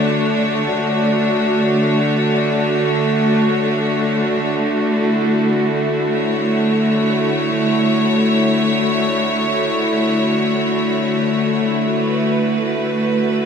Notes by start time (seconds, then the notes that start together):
Already playing: D3 A3 D4 F#4 C#5
4.83 E4
6.10 C#5
11.98 B4